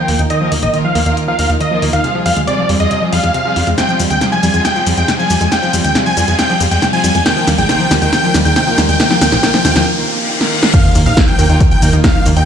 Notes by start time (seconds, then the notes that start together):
Already playing: D#3 A#3 F4 A#4 G5, riser
0.08 D#2 A#3, open hi-hat
0.19 D#2 D#4, closed hi-hat
0.30 D#3 A#3 F4 A#4 D#5, closed hi-hat
0.41 D#3 F3 A#3 F4 A#4
0.52 D#2 A#3, open hi-hat
0.63 A#1 D#4 D#5, closed hi-hat
0.73 D#3 A#3 F4 A#4, closed hi-hat
0.84 F3 F5
0.95 D#2 D#3 A#3 F4 A#4, open hi-hat
1.06 D#2 D#3 A#3 D#4 F4 A#4, closed hi-hat
1.17 D#3, closed hi-hat
1.28 D#3 F3 A#3 F4 A#4 F5
1.39 D#2 D#3 A#3 F4 A#4, open hi-hat
1.50 D#2 D#4, closed hi-hat
1.61 D#3 D#5, closed hi-hat
1.71 D#3 F3 A#3 F4 A#4
1.82 D#2 A#3, open hi-hat
1.93 D#2 D#4 F5, closed hi-hat
2.04 C3 G3 C4 F4 G#4, closed hi-hat
2.15 F3 G3 C4 F4 G#4
2.26 F2 G3 F5, open hi-hat
2.37 D#2 G#3, closed hi-hat
2.47 C3 G3 C4 F4 G#4 D5, closed hi-hat
2.58 F3
2.69 F2 G3 C4 F4 G#4, open hi-hat
2.80 F2 G3 G#3 C4 F4 G#4 D#5, closed hi-hat
2.91 C3, closed hi-hat
3.02 F3 G3 C4 F4 G#4
3.12 F2 G3 C4 F4 G#4 F5, open hi-hat
3.23 F2 G#3, closed hi-hat
3.34 C3, closed hi-hat
3.45 F3 G3 C4 F4 G#4
3.56 F2 G3, open hi-hat
3.67 F2 G#3, closed hi-hat
3.78 C3 G3 C4 F4 G#4 G5, snare, closed hi-hat, shaker
3.89 F3 G3 C4 F4 G#4, shaker
3.99 F2 G3, open hi-hat, shaker
4.10 D#2 G#3 G5, closed hi-hat, shaker
4.21 C3 G3 C4 F4 G#4, snare, closed hi-hat, shaker
4.32 F3 G#5, shaker
4.43 F2 G3 C4 F4 G#4, open hi-hat, shaker
4.54 F2 G3 G#3 C4 F4 G#4, closed hi-hat, shaker
4.65 C3 G5, snare, closed hi-hat, shaker
4.76 F3 G3 C4 F4 G#4, shaker
4.86 F2 G3 C4 F4 G#4, open hi-hat, shaker
4.97 F2 G#3 G5, closed hi-hat, shaker
5.08 C3, snare, closed hi-hat, shaker
5.19 F3 G3 C4 F4 G#4 G#5, shaker
5.30 F2 G3, open hi-hat, shaker
5.41 F2 G#3, closed hi-hat, shaker
5.52 C3 G3 C4 F4 G#4 G5, snare, closed hi-hat, shaker
5.63 F3 G3 C4 F4 G#4, shaker
5.73 F2 G3, open hi-hat, shaker
5.84 D#2 G#3 G5, closed hi-hat, shaker
5.95 C3 G3 C4 F4 G#4, snare, closed hi-hat, shaker
6.06 F3 G#5, shaker
6.17 F2 G3 C4 F4 G#4, open hi-hat, shaker
6.28 F2 G3 G#3 C4 F4 G#4, closed hi-hat, shaker
6.39 C3 G5, snare, closed hi-hat, shaker
6.50 F3 G3 C4 F4 G#4, shaker
6.60 F2 G3 C4 F4 G#4, open hi-hat, shaker
6.71 F2 G#3 G5, closed hi-hat, shaker
6.82 C3, snare, closed hi-hat, shaker
6.93 F3 G3 C4 F4 G#4 G#5, shaker
7.04 F2 G3, open hi-hat, shaker
7.15 F2 G#3, closed hi-hat, shaker
7.26 C3 D#3 A#3 F4 A#4 G5, snare, closed hi-hat, shaker
7.36 D#3 F3 A#3 F4 A#4, shaker
7.47 D#2 G3, snare, open hi-hat, shaker
7.58 A#1 G#3 G5, closed hi-hat, shaker
7.69 C3 D#3 A#3 F4 A#4 G5, snare, closed hi-hat, shaker
7.80 F3, shaker
7.91 D#2 D#3 G3 A#3 F4 A#4, snare, open hi-hat, shaker
8.02 D#2 D#3 G#3 A#3 F4 A#4 G5, closed hi-hat, shaker
8.13 C3 G5, snare, closed hi-hat, shaker
8.23 D#3 F3 A#3 F4 A#4, shaker
8.34 D#2 D#3 G3 A#3 F4 A#4, snare, open hi-hat, shaker
8.45 D#2 G#3 G5, closed hi-hat, shaker
8.56 C3 G5, snare, closed hi-hat, shaker
8.67 D#3 F3 A#3 F4 A#4, shaker
8.78 D#2 G3, snare, open hi-hat, shaker
8.89 D#2 G#3 G5, closed hi-hat, shaker
9.00 C3 D#3 A#3 F4 A#4 G5, snare, closed hi-hat, shaker
9.10 D#3 F3 A#3 F4 A#4, snare, shaker
9.21 D#2 C3 G5, snare, open hi-hat, shaker
9.32 A#1 F3, snare, closed hi-hat, shaker
9.43 C3 D#3 A#3 F4 A#4 G5, snare, closed hi-hat, shaker
9.54 F3, snare, shaker
9.65 D#2 C3 D#3 A#3 F4 A#4 G5, snare, open hi-hat, shaker
9.75 D#2 D#3 F3 A#3 F4 A#4, snare, closed hi-hat, shaker
9.87 reverse cymbal
9.97 D#3 A#3 F4 A#4
10.08 D#3 A#3 F4 A#4
10.41 D#3 A#3 F4 A#4, snare
10.63 snare
10.73 D#3 A#3 F4 A#4 F5, kick, closed hi-hat, crash, sub drop, shaker
10.84 D#3 F3 A#3 F4 A#4, closed hi-hat, shaker
10.95 D#2 A#3, open hi-hat, shaker
11.06 A#1 D#4 F5, closed hi-hat, shaker
11.17 D#3 A#3 F4 A#4, kick, snare, closed hi-hat, shaker
11.28 F3 G5, closed hi-hat, shaker
11.39 D#2 D#3 A#3 F4 A#4, open hi-hat, shaker
11.49 D#2 D#3 A#3 D#4 F4 A#4, shaker
11.60 D#3, kick, closed hi-hat, shaker
11.71 D#3 F3 A#3 F4 A#4 G5, closed hi-hat, shaker
11.82 D#2 D#3 A#3 F4 A#4, open hi-hat, shaker
11.93 D#2 D#4, closed hi-hat, shaker
12.04 D#3 F5, kick, snare, closed hi-hat, shaker
12.14 D#3 F3 A#3 F4 A#4, shaker
12.26 D#2 A#3, open hi-hat, shaker
12.37 D#2 D#4 G5, closed hi-hat, shaker